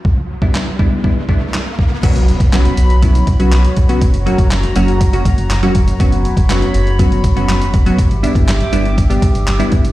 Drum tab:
CC |----------------|x---------------|----------------|----------------|
HH |----------------|xxxxxxxxxxxxxxxx|xxxxxxxxxxxxxxxx|xxxxxxxxxxxxxxxx|
CP |----x-------x---|----x-------x---|----x-------x---|----x-------x---|
SD |----o-------o---|----o-------o---|----o-------o---|----o-------o---|
BD |o--o--o-o-o---o-|o--o----o-o---o-|o--o----o-o---o-|o--o----o-o---o-|

CC |----------------|
HH |xxxxxxxxxxxxxxxx|
CP |----x-------x---|
SD |----o-------o---|
BD |o--o----o-o---o-|